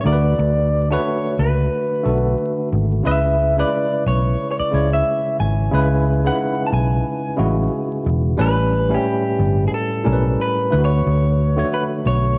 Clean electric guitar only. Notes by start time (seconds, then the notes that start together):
0.01 C#5
0.07 D5
0.92 C#5
1.39 B4
3.07 E5
3.60 D5
4.08 C#5
4.51 C#5
4.59 D5
4.93 E5
5.40 G#5
6.27 F#5
6.67 A5
6.73 G#5
8.41 B4
8.94 G4
9.68 G#4
9.74 A4
10.41 B4
10.85 C#5
11.74 B4
12.07 C#5